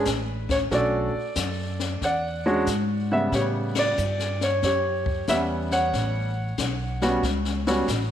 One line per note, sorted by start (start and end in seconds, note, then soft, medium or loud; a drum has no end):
0.00 0.54 B4 medium
0.05 0.69 A1 medium
0.05 kick soft
0.05 snare soft
0.05 hi-hat pedal soft
0.49 0.56 C#5 medium
0.49 kick soft
0.49 snare soft
0.71 1.11 B1 medium
0.71 1.10 A3 medium
0.71 1.10 C#4 medium
0.71 1.11 D4 medium
0.71 1.11 F#4 medium
0.71 1.99 A4 medium
0.71 1.99 D5 medium
0.71 brush sweep soft
0.71 kick soft
0.71 snare soft
1.14 muted upright bass stroke soft
1.35 2.00 F#2 medium
1.35 kick soft
1.35 snare medium
1.35 hi-hat pedal medium
1.79 snare soft
2.01 2.65 E2 medium
2.01 3.30 D5 medium
2.01 3.10 F#5 medium
2.01 brush sweep soft
2.01 kick soft
2.01 snare soft
2.46 2.65 G#3 medium
2.46 2.65 C#4 medium
2.46 2.65 D4 medium
2.46 2.65 F#4 medium
2.66 3.30 G#2 medium
2.66 kick soft
2.66 snare medium
2.66 hi-hat pedal medium
3.12 3.94 C#3 medium
3.12 3.93 G3 medium
3.12 3.94 B3 medium
3.12 3.32 E5 medium
3.12 3.94 F#5 medium
3.32 3.95 A2 medium
3.32 4.60 G4 medium
3.32 3.44 C#5 medium
3.32 brush sweep soft
3.32 kick soft
3.32 snare soft
3.75 4.44 D5 medium
3.75 snare medium
3.75 ride medium
3.97 4.61 G2 medium
3.97 hi-hat pedal medium
4.19 snare soft
4.41 4.63 C#5 medium
4.41 snare soft
4.62 5.26 F#2 medium
4.62 5.90 G4 medium
4.62 5.31 C#5 medium
4.62 brush sweep soft
4.62 kick soft
4.62 snare soft
5.06 kick soft
5.27 5.91 E2 medium
5.27 6.28 G3 medium
5.27 6.28 B3 soft
5.27 6.28 C#4 medium
5.27 5.39 E5 medium
5.27 5.71 F#5 medium
5.27 kick soft
5.27 snare soft
5.27 hi-hat pedal soft
5.71 8.11 C#5 medium
5.71 8.11 F#5 medium
5.71 snare soft
5.93 6.56 A1 medium
5.93 brush sweep soft
5.93 kick soft
5.93 snare soft
6.58 7.21 B1 medium
6.58 kick soft
6.58 snare medium
6.58 hi-hat pedal soft
7.02 7.21 G3 medium
7.02 7.21 B3 medium
7.02 7.21 C#4 medium
7.02 7.21 F#4 medium
7.02 snare soft
7.23 7.86 C#2 medium
7.23 brush sweep soft
7.23 kick soft
7.23 snare soft
7.45 snare soft
7.67 7.86 G3 medium
7.67 7.86 B3 medium
7.67 7.87 C#4 medium
7.67 7.87 F#4 medium
7.67 snare soft
7.88 8.11 A1 medium
7.88 kick soft
7.88 snare medium
7.88 hi-hat pedal soft